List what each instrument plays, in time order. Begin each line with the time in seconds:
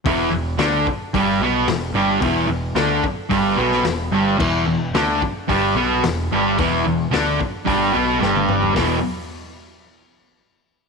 0.05 picked electric bass E1, distorted electric guitar E2 E3, kick, open hi-hat
0.30 picked electric bass E1, distorted electric guitar E2
0.58 picked electric bass D2, distorted electric guitar D3 D4, snare, open hi-hat
0.87 muted distorted electric guitar stroke, kick
1.13 picked electric bass G1, distorted electric guitar G2 G3, kick, open hi-hat
1.40 picked electric bass B1, distorted electric guitar B2 B3
1.67 picked electric bass E1, distorted electric guitar E2, snare, open hi-hat
1.94 picked electric bass G1, distorted electric guitar G2 G3
2.21 picked electric bass E1, distorted electric guitar E2 E3, kick, open hi-hat
2.47 picked electric bass E1, distorted electric guitar E2
2.75 picked electric bass D2, distorted electric guitar D3 D4, snare, open hi-hat
3.03 muted picked electric bass stroke, muted distorted electric guitar stroke, kick
3.29 picked electric bass G1, distorted electric guitar G2 G3, kick, open hi-hat
3.56 picked electric bass B1, distorted electric guitar B2 B3
3.72 snare
3.83 picked electric bass E1, distorted electric guitar E2, snare, open hi-hat
4.11 picked electric bass G1, distorted electric guitar G2 G3
4.38 picked electric bass E1, distorted electric guitar E2 E3, kick, crash
4.66 picked electric bass E1, distorted electric guitar E2
4.94 picked electric bass D2, distorted electric guitar D3 D4, snare, open hi-hat
5.22 muted picked electric bass stroke, muted distorted electric guitar stroke, kick
5.48 picked electric bass G1, distorted electric guitar G2 G3, kick, open hi-hat
5.75 picked electric bass B1, distorted electric guitar B2 B3
6.04 picked electric bass E1, distorted electric guitar E2, snare, open hi-hat
6.32 picked electric bass G1, distorted electric guitar G2 G3
6.58 picked electric bass E1, distorted electric guitar E2 E3, kick, open hi-hat
6.85 picked electric bass E1, distorted electric guitar E2
7.11 picked electric bass D2, distorted electric guitar D3 D4, snare, open hi-hat
7.40 muted picked electric bass stroke, muted distorted electric guitar stroke, kick
7.65 picked electric bass G1, distorted electric guitar G2 G3, kick, open hi-hat
7.92 picked electric bass B1, distorted electric guitar B2 B3
8.19 picked electric bass G1, distorted electric guitar G2 G3, snare
8.36 high tom
8.49 mid tom
8.63 floor tom
8.74 picked electric bass E1, distorted electric guitar E2 B2 E3, kick, snare, open hi-hat